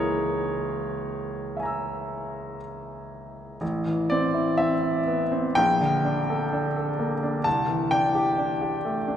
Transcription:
grand piano
Already playing: C#2 E3 G#3 A#3 E4 G#4 A#4 C#5
1.57 E5 G#5
1.63 A#5 E6
3.61 A1
3.86 E3
4.10 C4 D5
4.34 E4
4.58 C4 E5
4.83 E4
5.06 B3
5.32 C4
5.55 A#1 G5
5.81 D3
6.05 D4
6.30 A4
6.53 D4
6.76 A4
6.99 A#3
7.23 D4
7.44 C2 A5
7.68 E3
7.91 D4 G5
8.15 G4
8.38 D4
8.61 G4
8.85 A3
9.08 D4

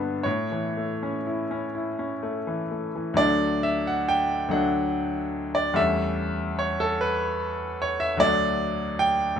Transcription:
grand piano
Already playing: G2 D3 G3 D4 E5
0.00 B3
0.23 A2 C#5
0.52 E3
0.77 A3
1.03 C#4
1.27 E4
1.51 C#4
1.75 E4
1.99 C#4
2.23 A3
2.47 E3
2.71 A3
2.95 E3
3.14 D2 F#3 A3 D4 D5
3.63 E5
3.87 F#5
4.09 G5
4.48 D2 F#3 A3 F#5
4.53 D4
5.55 D5
5.73 E2 G3 A3 C#4 E5
6.59 C#5
6.80 A4
7.01 B4
7.82 C#5
8.00 E5
8.17 D2 F#3 A3 D5
8.21 D4
8.99 G5
9.36 D2

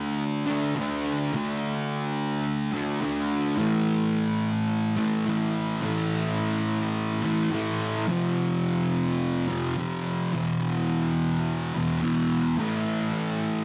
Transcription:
distorted electric guitar
Already playing: D3 A3 D4
0.47 A3 D4
0.52 D3
0.76 D3 A3
0.80 D4
1.34 D3 A3 D4
2.73 D3 A3 D4
3.01 D3 A3 D4
3.56 A2 E3 A3
4.96 A2 E3 A3
5.26 A2 E3 A3
5.81 A2 E3 A3
7.22 A2 E3 A3
7.51 A2 E3 A3
8.07 F2 C3 F3
9.48 F2 C3 F3
9.77 F2 C3 F3
10.33 E2 B2 E3
11.74 E2 B2 E3
12.01 E2 B2 E3
12.58 A2 E3 A3

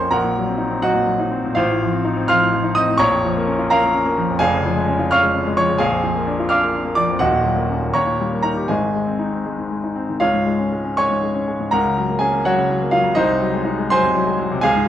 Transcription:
grand piano
Already playing: A#1 F3 A#3 C#4 F4 C5 C#5 F5 A#5 C6 C#6
0.00 F2
0.11 A#1 A#4 F#5 A#5
0.24 A#2
0.37 F#3
0.47 C4
0.58 D#4
0.71 C4
0.83 F#3 F#4 D#5 F#5
0.95 A#2
1.07 F#3
1.20 D#4
1.31 C4
1.44 A#2
1.55 A1 F4 C5 F5
1.70 A2
1.82 F3
1.92 C4
2.04 D#4
2.16 C4
2.28 F3 F5 C6 F6
2.41 A2
2.53 F3
2.64 D#4
2.75 C4 D#5 D#6
2.87 A2
2.97 A#1 C#5 A#5 C#6
3.11 F2
3.25 F3
3.36 A#3
3.47 C#4
3.58 F4
3.70 C#4 A#4 F5 A#5
3.82 A#3
3.93 C#4
4.05 A#3
4.18 F3
4.29 F2
4.39 F1 F2 G#4 F5 G#5
4.53 C#3
4.66 F3
4.76 G#3
4.88 C#4
4.99 F4
5.11 C#4 F5 C#6 F6
5.23 G#3
5.34 C#4
5.47 G#3
5.57 F3 C#5 C#6
5.69 C#3
5.79 A#1 G#4 F5 G#5
5.92 F2
6.04 F3
6.15 A#3
6.27 D4
6.40 F4
6.49 D4 F5 D6 F6
6.62 A#3
6.73 D4
6.85 A#3
6.95 F3 D5 D6
7.08 F2
7.19 D#1 D#2 F#4 D#5 F#5
7.32 A#2
7.44 F#3
7.55 A#3
7.69 C#4
7.81 A#3
7.94 D#2 C#5 A#5 C#6
8.07 A#2
8.20 G3
8.33 A#3
8.42 D#4 A#4 A#5
8.57 G4
8.68 G#1 G#2 G#4 D#5 G#5
8.82 D#3
8.94 G#3
9.07 C4
9.19 D#4
9.32 C4
9.46 G#3
9.59 D#3
9.71 G#3
9.84 D#4
9.95 C4
10.09 D#3
10.20 C#2 F4 C#5 F5
10.34 G#2
10.46 G#3
10.59 C#4
10.72 G#3
10.84 C#4
10.97 G#3 C#5 G#5 C#6
11.10 G#2
11.23 G#3
11.34 C#4
11.48 G#3
11.60 G#2
11.71 C#2 A#4 F#5 A#5
11.84 C#3
11.97 F#3
12.09 A#3
12.19 C#4 G#4 G#5
12.32 A#3
12.45 F#3 F#4 C#5 F#5
12.57 C#3
12.70 F#3
12.81 A#3
12.91 F#3 F4 F5
13.03 C#3
13.15 C2 D#4 C5 D#5
13.29 C3
13.41 F#3
13.54 G#3
13.65 D#4
13.79 G#3
13.91 F#3 C5 G#5 C6
14.03 C3
14.15 F#3
14.27 G#3
14.39 F#3
14.52 C3
14.62 C#2 G#4 F5 G#5
14.75 G#2

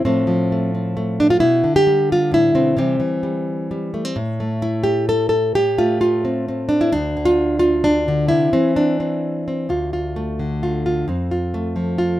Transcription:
nylon-string guitar
0.05 A2 F3 A3 C4
0.27 F3
0.52 A3
0.75 C4
0.97 A3
1.20 D4
1.30 F4
1.40 B2 E4
1.64 D3
1.76 G4
1.87 G3
2.12 F4
2.32 A2 E4
2.55 B2 C4
2.77 C3 E3 G3 C4
3.00 E3
3.23 G3
3.71 G3
3.94 A3
4.05 C4
4.16 A2
4.40 A3
4.62 E4
4.84 G4
5.09 A4
5.29 A4
5.55 A2 G4
5.78 A3 F4
6.01 F4
6.25 C4
6.48 C4
6.69 D4
6.81 E4
6.92 D2 D4
7.17 D3
7.25 F4
7.59 F4
7.84 D4
8.08 D3
8.28 C3 E4
8.53 E3 C4
8.76 D4
9.00 C4
9.48 C4
9.69 D2 F4
9.93 F4
10.16 A3
10.39 D3
10.63 F4
10.86 F4
11.08 F2 C4
11.31 F4
11.54 A3
11.76 F3
11.98 F4

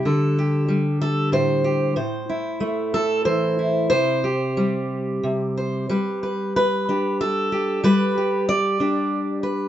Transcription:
steel-string acoustic guitar
Already playing: G3
0.05 D3 A4
0.39 G4
0.68 G3
1.01 A4
1.32 A2 C5
1.64 G4
1.96 A2 C5
2.29 E4
2.60 A3
2.94 A4
3.25 E3 C5
3.59 E4
3.90 C3 C5
4.24 G4
4.57 G3
5.23 C3
5.57 C5
5.89 G3 B4
6.23 B4
6.56 B4
6.89 D4 G4
7.21 A4
7.52 G4
7.84 G3 B4
8.18 G4
8.49 D5
8.80 D4 G4
9.43 B4

